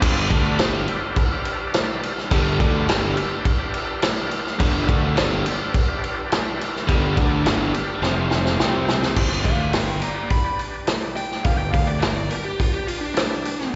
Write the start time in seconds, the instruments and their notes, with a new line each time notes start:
0.00 fingered electric bass G1, overdriven electric guitar G2 D3 G3, tonewheel organ D4 G4 B4 D5, kick, crash
0.30 fingered electric bass D2, overdriven electric guitar D3 A3 D4, kick, crash
0.58 fingered electric bass G1, overdriven electric guitar G2 D3 G3, snare, crash
0.88 tonewheel organ D4 G4 B4 D5, crash
1.16 kick, crash
1.32 tonewheel organ D4 G4 B4 D5
1.45 crash
1.74 snare, crash
2.03 crash
2.18 snare
2.31 fingered electric bass G1, overdriven electric guitar G2 D3 G3, tonewheel organ D4 G4 B4 D5, kick, crash
2.60 fingered electric bass D2, overdriven electric guitar D3 A3 D4, kick, crash
2.87 fingered electric bass G1, overdriven electric guitar G2 D3 G3, snare, crash
3.16 tonewheel organ D4 G4 B4 D5, crash
3.45 kick, crash
3.58 tonewheel organ D4 G4 B4 D5
3.74 crash
4.02 snare, crash
4.31 crash
4.47 snare
4.59 fingered electric bass G1, overdriven electric guitar G2 D3 G3, tonewheel organ D4 G4 B4 E5, kick, crash
4.88 fingered electric bass D2, overdriven electric guitar D3 A3 D4, kick, crash
5.15 fingered electric bass G1, overdriven electric guitar G2 D3 G3, snare, crash
5.44 tonewheel organ D4 G4 B4 D5, crash
5.74 kick, crash
5.88 tonewheel organ D4 G4 B4 D5
6.04 crash
6.32 snare, crash
6.61 crash
6.76 snare
6.87 fingered electric bass G1, overdriven electric guitar G2 D3 G3, tonewheel organ D4 G4 B4 D5, kick, crash
7.16 fingered electric bass D2, overdriven electric guitar D3 A3 D4, kick, crash
7.44 fingered electric bass G1, overdriven electric guitar G2 D3 G3, snare, crash
7.73 tonewheel organ D4 G4 B4 D5, crash
8.02 fingered electric bass F1, overdriven electric guitar F2 C3 F3, tonewheel organ C4 F4 C5 F5, snare
8.15 tonewheel organ C4 F4 C5 F5
8.31 snare
8.45 snare
8.59 fingered electric bass C2, overdriven electric guitar C3 G3 C4, tonewheel organ C4 G4 C5 G5, snare
8.89 snare
9.03 snare
9.16 fingered electric bass G1, tonewheel organ D4 G4 B4 D5, kick, crash
9.44 fingered electric bass D2, lead electric guitar D5 F5, kick, open hi-hat
9.73 fingered electric bass G1, lead electric guitar B4 G5, snare, open hi-hat
10.02 tonewheel organ D4 G4 B4 D5, lead electric guitar D5 A#5, open hi-hat
10.30 lead electric guitar B5, kick, open hi-hat
10.44 tonewheel organ D4 G4 B4 D5
10.59 open hi-hat
10.87 snare, open hi-hat
11.16 lead electric guitar G5, open hi-hat
11.31 snare
11.44 fingered electric bass G1, tonewheel organ D4 G4 B4 D5, lead electric guitar F5, kick, open hi-hat
11.58 lead electric guitar G5
11.73 fingered electric bass D2, lead electric guitar F5, kick, open hi-hat
11.87 lead electric guitar D5
12.00 fingered electric bass G1, lead electric guitar A#4, snare, open hi-hat
12.15 lead electric guitar D5
12.30 tonewheel organ D4 G4 B4 D5, lead electric guitar A#4, open hi-hat
12.45 lead electric guitar G4
12.60 lead electric guitar F4, kick, open hi-hat
12.73 tonewheel organ D4 G4 B4 D5, lead electric guitar G4
12.87 lead electric guitar F4, open hi-hat
13.00 lead electric guitar D4
13.15 lead electric guitar D4, snare, open hi-hat
13.45 open hi-hat
13.61 snare